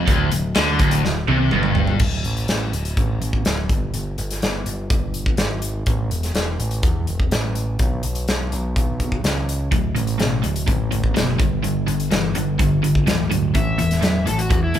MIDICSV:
0, 0, Header, 1, 5, 480
1, 0, Start_track
1, 0, Key_signature, 2, "major"
1, 0, Tempo, 481155
1, 81, Time_signature, 4, 2, 24, 8
1, 14757, End_track
2, 0, Start_track
2, 0, Title_t, "Electric slide guitar"
2, 0, Program_c, 0, 29
2, 13525, Note_on_c, 0, 76, 92
2, 14219, Note_off_c, 0, 76, 0
2, 14243, Note_on_c, 0, 69, 76
2, 14347, Note_on_c, 0, 66, 78
2, 14357, Note_off_c, 0, 69, 0
2, 14585, Note_off_c, 0, 66, 0
2, 14601, Note_on_c, 0, 64, 84
2, 14757, Note_off_c, 0, 64, 0
2, 14757, End_track
3, 0, Start_track
3, 0, Title_t, "Overdriven electric guitar"
3, 0, Program_c, 1, 29
3, 80, Note_on_c, 1, 38, 102
3, 311, Note_off_c, 1, 38, 0
3, 323, Note_on_c, 1, 38, 75
3, 513, Note_off_c, 1, 38, 0
3, 558, Note_on_c, 1, 50, 95
3, 791, Note_off_c, 1, 50, 0
3, 791, Note_on_c, 1, 38, 105
3, 1028, Note_off_c, 1, 38, 0
3, 1049, Note_on_c, 1, 38, 79
3, 1236, Note_off_c, 1, 38, 0
3, 1279, Note_on_c, 1, 48, 102
3, 1512, Note_off_c, 1, 48, 0
3, 1520, Note_on_c, 1, 43, 96
3, 1993, Note_off_c, 1, 43, 0
3, 9690, Note_on_c, 1, 38, 72
3, 9691, Note_on_c, 1, 45, 93
3, 9907, Note_off_c, 1, 38, 0
3, 9907, Note_off_c, 1, 45, 0
3, 9929, Note_on_c, 1, 38, 69
3, 9933, Note_on_c, 1, 45, 80
3, 10146, Note_off_c, 1, 38, 0
3, 10148, Note_off_c, 1, 45, 0
3, 10170, Note_on_c, 1, 38, 75
3, 10176, Note_on_c, 1, 47, 95
3, 10386, Note_off_c, 1, 38, 0
3, 10389, Note_off_c, 1, 47, 0
3, 10416, Note_on_c, 1, 38, 74
3, 10417, Note_on_c, 1, 45, 74
3, 10626, Note_off_c, 1, 38, 0
3, 10630, Note_off_c, 1, 45, 0
3, 10638, Note_on_c, 1, 38, 82
3, 10642, Note_on_c, 1, 45, 89
3, 10860, Note_off_c, 1, 38, 0
3, 10861, Note_off_c, 1, 45, 0
3, 10883, Note_on_c, 1, 38, 69
3, 10887, Note_on_c, 1, 45, 76
3, 11102, Note_off_c, 1, 38, 0
3, 11104, Note_off_c, 1, 45, 0
3, 11115, Note_on_c, 1, 38, 81
3, 11118, Note_on_c, 1, 47, 94
3, 11338, Note_off_c, 1, 38, 0
3, 11339, Note_off_c, 1, 47, 0
3, 11355, Note_on_c, 1, 43, 80
3, 11360, Note_on_c, 1, 50, 79
3, 11577, Note_off_c, 1, 43, 0
3, 11579, Note_off_c, 1, 50, 0
3, 11597, Note_on_c, 1, 43, 73
3, 11599, Note_on_c, 1, 50, 81
3, 11817, Note_off_c, 1, 43, 0
3, 11818, Note_off_c, 1, 50, 0
3, 11836, Note_on_c, 1, 43, 64
3, 11840, Note_on_c, 1, 50, 77
3, 12057, Note_off_c, 1, 43, 0
3, 12059, Note_off_c, 1, 50, 0
3, 12076, Note_on_c, 1, 43, 82
3, 12079, Note_on_c, 1, 52, 92
3, 12296, Note_off_c, 1, 43, 0
3, 12298, Note_off_c, 1, 52, 0
3, 12317, Note_on_c, 1, 43, 65
3, 12324, Note_on_c, 1, 50, 86
3, 12536, Note_off_c, 1, 43, 0
3, 12540, Note_off_c, 1, 50, 0
3, 12551, Note_on_c, 1, 43, 86
3, 12562, Note_on_c, 1, 50, 91
3, 12773, Note_off_c, 1, 43, 0
3, 12778, Note_off_c, 1, 50, 0
3, 12789, Note_on_c, 1, 43, 73
3, 12797, Note_on_c, 1, 50, 76
3, 13012, Note_off_c, 1, 43, 0
3, 13015, Note_off_c, 1, 50, 0
3, 13031, Note_on_c, 1, 43, 74
3, 13036, Note_on_c, 1, 52, 89
3, 13252, Note_off_c, 1, 43, 0
3, 13255, Note_off_c, 1, 52, 0
3, 13263, Note_on_c, 1, 43, 68
3, 13268, Note_on_c, 1, 50, 72
3, 13488, Note_off_c, 1, 43, 0
3, 13490, Note_off_c, 1, 50, 0
3, 13506, Note_on_c, 1, 45, 78
3, 13513, Note_on_c, 1, 52, 85
3, 13729, Note_off_c, 1, 45, 0
3, 13733, Note_off_c, 1, 52, 0
3, 13750, Note_on_c, 1, 45, 69
3, 13751, Note_on_c, 1, 52, 79
3, 13970, Note_off_c, 1, 45, 0
3, 13971, Note_off_c, 1, 52, 0
3, 13986, Note_on_c, 1, 45, 78
3, 13995, Note_on_c, 1, 54, 80
3, 14208, Note_off_c, 1, 45, 0
3, 14213, Note_off_c, 1, 54, 0
3, 14234, Note_on_c, 1, 45, 76
3, 14239, Note_on_c, 1, 52, 89
3, 14451, Note_off_c, 1, 45, 0
3, 14454, Note_off_c, 1, 52, 0
3, 14476, Note_on_c, 1, 45, 84
3, 14484, Note_on_c, 1, 52, 85
3, 14692, Note_off_c, 1, 45, 0
3, 14696, Note_off_c, 1, 52, 0
3, 14713, Note_on_c, 1, 45, 70
3, 14715, Note_on_c, 1, 52, 75
3, 14757, Note_off_c, 1, 45, 0
3, 14757, Note_off_c, 1, 52, 0
3, 14757, End_track
4, 0, Start_track
4, 0, Title_t, "Picked electric bass"
4, 0, Program_c, 2, 34
4, 80, Note_on_c, 2, 26, 92
4, 303, Note_off_c, 2, 26, 0
4, 319, Note_on_c, 2, 26, 74
4, 542, Note_off_c, 2, 26, 0
4, 563, Note_on_c, 2, 38, 100
4, 785, Note_off_c, 2, 38, 0
4, 796, Note_on_c, 2, 26, 90
4, 1021, Note_off_c, 2, 26, 0
4, 1045, Note_on_c, 2, 26, 78
4, 1265, Note_off_c, 2, 26, 0
4, 1282, Note_on_c, 2, 36, 96
4, 1504, Note_off_c, 2, 36, 0
4, 1517, Note_on_c, 2, 31, 103
4, 1964, Note_off_c, 2, 31, 0
4, 1992, Note_on_c, 2, 26, 94
4, 2219, Note_off_c, 2, 26, 0
4, 2240, Note_on_c, 2, 33, 83
4, 2463, Note_off_c, 2, 33, 0
4, 2481, Note_on_c, 2, 33, 83
4, 2704, Note_off_c, 2, 33, 0
4, 2718, Note_on_c, 2, 26, 80
4, 2943, Note_off_c, 2, 26, 0
4, 2965, Note_on_c, 2, 33, 88
4, 3187, Note_off_c, 2, 33, 0
4, 3197, Note_on_c, 2, 33, 83
4, 3423, Note_off_c, 2, 33, 0
4, 3447, Note_on_c, 2, 26, 90
4, 3669, Note_off_c, 2, 26, 0
4, 3681, Note_on_c, 2, 31, 80
4, 3906, Note_off_c, 2, 31, 0
4, 3929, Note_on_c, 2, 31, 95
4, 4150, Note_off_c, 2, 31, 0
4, 4171, Note_on_c, 2, 31, 85
4, 4392, Note_off_c, 2, 31, 0
4, 4412, Note_on_c, 2, 31, 85
4, 4632, Note_off_c, 2, 31, 0
4, 4650, Note_on_c, 2, 31, 82
4, 4872, Note_off_c, 2, 31, 0
4, 4891, Note_on_c, 2, 31, 90
4, 5336, Note_off_c, 2, 31, 0
4, 5363, Note_on_c, 2, 32, 86
4, 5813, Note_off_c, 2, 32, 0
4, 5854, Note_on_c, 2, 33, 86
4, 6075, Note_off_c, 2, 33, 0
4, 6080, Note_on_c, 2, 28, 92
4, 6308, Note_off_c, 2, 28, 0
4, 6326, Note_on_c, 2, 28, 81
4, 6551, Note_off_c, 2, 28, 0
4, 6575, Note_on_c, 2, 33, 86
4, 6796, Note_off_c, 2, 33, 0
4, 6817, Note_on_c, 2, 40, 86
4, 7038, Note_off_c, 2, 40, 0
4, 7069, Note_on_c, 2, 28, 76
4, 7284, Note_off_c, 2, 28, 0
4, 7300, Note_on_c, 2, 33, 94
4, 7742, Note_off_c, 2, 33, 0
4, 7777, Note_on_c, 2, 35, 90
4, 7998, Note_off_c, 2, 35, 0
4, 8021, Note_on_c, 2, 35, 79
4, 8240, Note_off_c, 2, 35, 0
4, 8265, Note_on_c, 2, 35, 81
4, 8482, Note_off_c, 2, 35, 0
4, 8505, Note_on_c, 2, 35, 85
4, 8722, Note_off_c, 2, 35, 0
4, 8742, Note_on_c, 2, 35, 76
4, 9183, Note_off_c, 2, 35, 0
4, 9217, Note_on_c, 2, 37, 86
4, 9660, Note_off_c, 2, 37, 0
4, 9692, Note_on_c, 2, 26, 92
4, 9915, Note_off_c, 2, 26, 0
4, 9940, Note_on_c, 2, 33, 89
4, 10159, Note_off_c, 2, 33, 0
4, 10178, Note_on_c, 2, 33, 85
4, 10397, Note_off_c, 2, 33, 0
4, 10417, Note_on_c, 2, 26, 92
4, 10637, Note_off_c, 2, 26, 0
4, 10653, Note_on_c, 2, 33, 88
4, 10874, Note_off_c, 2, 33, 0
4, 10890, Note_on_c, 2, 33, 80
4, 11112, Note_off_c, 2, 33, 0
4, 11134, Note_on_c, 2, 30, 86
4, 11354, Note_off_c, 2, 30, 0
4, 11369, Note_on_c, 2, 31, 84
4, 11591, Note_off_c, 2, 31, 0
4, 11606, Note_on_c, 2, 31, 90
4, 11829, Note_off_c, 2, 31, 0
4, 11846, Note_on_c, 2, 31, 88
4, 12069, Note_off_c, 2, 31, 0
4, 12090, Note_on_c, 2, 31, 80
4, 12310, Note_off_c, 2, 31, 0
4, 12338, Note_on_c, 2, 31, 86
4, 12554, Note_off_c, 2, 31, 0
4, 12565, Note_on_c, 2, 31, 93
4, 13009, Note_off_c, 2, 31, 0
4, 13046, Note_on_c, 2, 26, 88
4, 13489, Note_off_c, 2, 26, 0
4, 13518, Note_on_c, 2, 33, 85
4, 13742, Note_off_c, 2, 33, 0
4, 13771, Note_on_c, 2, 28, 85
4, 13988, Note_off_c, 2, 28, 0
4, 13998, Note_on_c, 2, 28, 89
4, 14221, Note_off_c, 2, 28, 0
4, 14252, Note_on_c, 2, 33, 90
4, 14464, Note_off_c, 2, 33, 0
4, 14470, Note_on_c, 2, 40, 91
4, 14696, Note_off_c, 2, 40, 0
4, 14719, Note_on_c, 2, 28, 82
4, 14757, Note_off_c, 2, 28, 0
4, 14757, End_track
5, 0, Start_track
5, 0, Title_t, "Drums"
5, 76, Note_on_c, 9, 36, 107
5, 76, Note_on_c, 9, 42, 77
5, 176, Note_off_c, 9, 36, 0
5, 176, Note_off_c, 9, 42, 0
5, 314, Note_on_c, 9, 42, 86
5, 414, Note_off_c, 9, 42, 0
5, 546, Note_on_c, 9, 42, 71
5, 555, Note_on_c, 9, 38, 114
5, 646, Note_off_c, 9, 42, 0
5, 655, Note_off_c, 9, 38, 0
5, 789, Note_on_c, 9, 42, 71
5, 794, Note_on_c, 9, 36, 98
5, 889, Note_off_c, 9, 42, 0
5, 894, Note_off_c, 9, 36, 0
5, 911, Note_on_c, 9, 42, 85
5, 1010, Note_off_c, 9, 42, 0
5, 1045, Note_on_c, 9, 38, 65
5, 1145, Note_off_c, 9, 38, 0
5, 1276, Note_on_c, 9, 48, 66
5, 1375, Note_off_c, 9, 48, 0
5, 1509, Note_on_c, 9, 47, 92
5, 1609, Note_off_c, 9, 47, 0
5, 1625, Note_on_c, 9, 45, 73
5, 1725, Note_off_c, 9, 45, 0
5, 1746, Note_on_c, 9, 43, 94
5, 1846, Note_off_c, 9, 43, 0
5, 1869, Note_on_c, 9, 43, 89
5, 1969, Note_off_c, 9, 43, 0
5, 1989, Note_on_c, 9, 49, 96
5, 1995, Note_on_c, 9, 36, 107
5, 2089, Note_off_c, 9, 49, 0
5, 2094, Note_off_c, 9, 36, 0
5, 2239, Note_on_c, 9, 42, 62
5, 2339, Note_off_c, 9, 42, 0
5, 2362, Note_on_c, 9, 42, 54
5, 2462, Note_off_c, 9, 42, 0
5, 2475, Note_on_c, 9, 42, 57
5, 2484, Note_on_c, 9, 38, 97
5, 2575, Note_off_c, 9, 42, 0
5, 2584, Note_off_c, 9, 38, 0
5, 2726, Note_on_c, 9, 42, 61
5, 2826, Note_off_c, 9, 42, 0
5, 2845, Note_on_c, 9, 42, 56
5, 2944, Note_off_c, 9, 42, 0
5, 2964, Note_on_c, 9, 36, 105
5, 2966, Note_on_c, 9, 42, 56
5, 3064, Note_off_c, 9, 36, 0
5, 3066, Note_off_c, 9, 42, 0
5, 3208, Note_on_c, 9, 42, 57
5, 3308, Note_off_c, 9, 42, 0
5, 3323, Note_on_c, 9, 36, 78
5, 3423, Note_off_c, 9, 36, 0
5, 3441, Note_on_c, 9, 42, 61
5, 3450, Note_on_c, 9, 38, 109
5, 3541, Note_off_c, 9, 42, 0
5, 3550, Note_off_c, 9, 38, 0
5, 3686, Note_on_c, 9, 36, 102
5, 3689, Note_on_c, 9, 42, 55
5, 3785, Note_off_c, 9, 36, 0
5, 3789, Note_off_c, 9, 42, 0
5, 3927, Note_on_c, 9, 42, 64
5, 4027, Note_off_c, 9, 42, 0
5, 4169, Note_on_c, 9, 42, 61
5, 4269, Note_off_c, 9, 42, 0
5, 4295, Note_on_c, 9, 42, 59
5, 4304, Note_on_c, 9, 38, 30
5, 4395, Note_off_c, 9, 42, 0
5, 4404, Note_off_c, 9, 38, 0
5, 4412, Note_on_c, 9, 42, 62
5, 4421, Note_on_c, 9, 38, 99
5, 4511, Note_off_c, 9, 42, 0
5, 4520, Note_off_c, 9, 38, 0
5, 4649, Note_on_c, 9, 42, 58
5, 4749, Note_off_c, 9, 42, 0
5, 4890, Note_on_c, 9, 42, 57
5, 4891, Note_on_c, 9, 36, 110
5, 4989, Note_off_c, 9, 42, 0
5, 4990, Note_off_c, 9, 36, 0
5, 5126, Note_on_c, 9, 42, 63
5, 5226, Note_off_c, 9, 42, 0
5, 5249, Note_on_c, 9, 36, 86
5, 5348, Note_off_c, 9, 36, 0
5, 5361, Note_on_c, 9, 42, 63
5, 5370, Note_on_c, 9, 38, 104
5, 5461, Note_off_c, 9, 42, 0
5, 5470, Note_off_c, 9, 38, 0
5, 5606, Note_on_c, 9, 42, 62
5, 5705, Note_off_c, 9, 42, 0
5, 5847, Note_on_c, 9, 42, 57
5, 5853, Note_on_c, 9, 36, 101
5, 5947, Note_off_c, 9, 42, 0
5, 5953, Note_off_c, 9, 36, 0
5, 6095, Note_on_c, 9, 42, 61
5, 6195, Note_off_c, 9, 42, 0
5, 6218, Note_on_c, 9, 42, 55
5, 6227, Note_on_c, 9, 38, 31
5, 6318, Note_off_c, 9, 42, 0
5, 6327, Note_off_c, 9, 38, 0
5, 6331, Note_on_c, 9, 42, 58
5, 6340, Note_on_c, 9, 38, 93
5, 6431, Note_off_c, 9, 42, 0
5, 6440, Note_off_c, 9, 38, 0
5, 6581, Note_on_c, 9, 42, 60
5, 6681, Note_off_c, 9, 42, 0
5, 6692, Note_on_c, 9, 42, 53
5, 6792, Note_off_c, 9, 42, 0
5, 6812, Note_on_c, 9, 42, 57
5, 6816, Note_on_c, 9, 36, 110
5, 6912, Note_off_c, 9, 42, 0
5, 6916, Note_off_c, 9, 36, 0
5, 7056, Note_on_c, 9, 42, 56
5, 7156, Note_off_c, 9, 42, 0
5, 7179, Note_on_c, 9, 36, 82
5, 7278, Note_off_c, 9, 36, 0
5, 7296, Note_on_c, 9, 42, 62
5, 7305, Note_on_c, 9, 38, 104
5, 7396, Note_off_c, 9, 42, 0
5, 7404, Note_off_c, 9, 38, 0
5, 7536, Note_on_c, 9, 42, 61
5, 7636, Note_off_c, 9, 42, 0
5, 7772, Note_on_c, 9, 42, 59
5, 7776, Note_on_c, 9, 36, 102
5, 7872, Note_off_c, 9, 42, 0
5, 7876, Note_off_c, 9, 36, 0
5, 8010, Note_on_c, 9, 42, 65
5, 8110, Note_off_c, 9, 42, 0
5, 8132, Note_on_c, 9, 42, 55
5, 8232, Note_off_c, 9, 42, 0
5, 8257, Note_on_c, 9, 42, 54
5, 8266, Note_on_c, 9, 38, 100
5, 8357, Note_off_c, 9, 42, 0
5, 8366, Note_off_c, 9, 38, 0
5, 8501, Note_on_c, 9, 42, 61
5, 8600, Note_off_c, 9, 42, 0
5, 8740, Note_on_c, 9, 36, 95
5, 8747, Note_on_c, 9, 42, 60
5, 8840, Note_off_c, 9, 36, 0
5, 8847, Note_off_c, 9, 42, 0
5, 8977, Note_on_c, 9, 36, 72
5, 8977, Note_on_c, 9, 42, 58
5, 9077, Note_off_c, 9, 36, 0
5, 9077, Note_off_c, 9, 42, 0
5, 9097, Note_on_c, 9, 36, 81
5, 9197, Note_off_c, 9, 36, 0
5, 9219, Note_on_c, 9, 42, 65
5, 9228, Note_on_c, 9, 38, 105
5, 9318, Note_off_c, 9, 42, 0
5, 9327, Note_off_c, 9, 38, 0
5, 9466, Note_on_c, 9, 42, 60
5, 9565, Note_off_c, 9, 42, 0
5, 9695, Note_on_c, 9, 36, 100
5, 9696, Note_on_c, 9, 42, 58
5, 9794, Note_off_c, 9, 36, 0
5, 9796, Note_off_c, 9, 42, 0
5, 9937, Note_on_c, 9, 42, 59
5, 10037, Note_off_c, 9, 42, 0
5, 10049, Note_on_c, 9, 42, 55
5, 10149, Note_off_c, 9, 42, 0
5, 10171, Note_on_c, 9, 42, 53
5, 10180, Note_on_c, 9, 38, 89
5, 10271, Note_off_c, 9, 42, 0
5, 10280, Note_off_c, 9, 38, 0
5, 10410, Note_on_c, 9, 42, 57
5, 10510, Note_off_c, 9, 42, 0
5, 10532, Note_on_c, 9, 42, 63
5, 10632, Note_off_c, 9, 42, 0
5, 10651, Note_on_c, 9, 36, 96
5, 10653, Note_on_c, 9, 42, 56
5, 10750, Note_off_c, 9, 36, 0
5, 10753, Note_off_c, 9, 42, 0
5, 10893, Note_on_c, 9, 42, 53
5, 10993, Note_off_c, 9, 42, 0
5, 11009, Note_on_c, 9, 36, 82
5, 11109, Note_off_c, 9, 36, 0
5, 11133, Note_on_c, 9, 42, 54
5, 11142, Note_on_c, 9, 38, 112
5, 11233, Note_off_c, 9, 42, 0
5, 11242, Note_off_c, 9, 38, 0
5, 11368, Note_on_c, 9, 36, 105
5, 11371, Note_on_c, 9, 42, 59
5, 11468, Note_off_c, 9, 36, 0
5, 11471, Note_off_c, 9, 42, 0
5, 11613, Note_on_c, 9, 42, 61
5, 11712, Note_off_c, 9, 42, 0
5, 11850, Note_on_c, 9, 42, 62
5, 11950, Note_off_c, 9, 42, 0
5, 11969, Note_on_c, 9, 42, 53
5, 12069, Note_off_c, 9, 42, 0
5, 12085, Note_on_c, 9, 42, 59
5, 12094, Note_on_c, 9, 38, 110
5, 12184, Note_off_c, 9, 42, 0
5, 12193, Note_off_c, 9, 38, 0
5, 12321, Note_on_c, 9, 42, 63
5, 12421, Note_off_c, 9, 42, 0
5, 12563, Note_on_c, 9, 36, 106
5, 12567, Note_on_c, 9, 42, 64
5, 12663, Note_off_c, 9, 36, 0
5, 12666, Note_off_c, 9, 42, 0
5, 12809, Note_on_c, 9, 42, 61
5, 12909, Note_off_c, 9, 42, 0
5, 12921, Note_on_c, 9, 36, 80
5, 13021, Note_off_c, 9, 36, 0
5, 13040, Note_on_c, 9, 42, 65
5, 13049, Note_on_c, 9, 38, 104
5, 13140, Note_off_c, 9, 42, 0
5, 13149, Note_off_c, 9, 38, 0
5, 13283, Note_on_c, 9, 42, 65
5, 13383, Note_off_c, 9, 42, 0
5, 13513, Note_on_c, 9, 42, 62
5, 13517, Note_on_c, 9, 36, 103
5, 13613, Note_off_c, 9, 42, 0
5, 13616, Note_off_c, 9, 36, 0
5, 13753, Note_on_c, 9, 42, 64
5, 13853, Note_off_c, 9, 42, 0
5, 13875, Note_on_c, 9, 42, 54
5, 13884, Note_on_c, 9, 38, 31
5, 13974, Note_off_c, 9, 42, 0
5, 13983, Note_off_c, 9, 38, 0
5, 13991, Note_on_c, 9, 42, 60
5, 14000, Note_on_c, 9, 38, 91
5, 14091, Note_off_c, 9, 42, 0
5, 14100, Note_off_c, 9, 38, 0
5, 14234, Note_on_c, 9, 42, 61
5, 14334, Note_off_c, 9, 42, 0
5, 14353, Note_on_c, 9, 42, 61
5, 14453, Note_off_c, 9, 42, 0
5, 14469, Note_on_c, 9, 42, 59
5, 14471, Note_on_c, 9, 36, 106
5, 14569, Note_off_c, 9, 42, 0
5, 14571, Note_off_c, 9, 36, 0
5, 14707, Note_on_c, 9, 42, 52
5, 14757, Note_off_c, 9, 42, 0
5, 14757, End_track
0, 0, End_of_file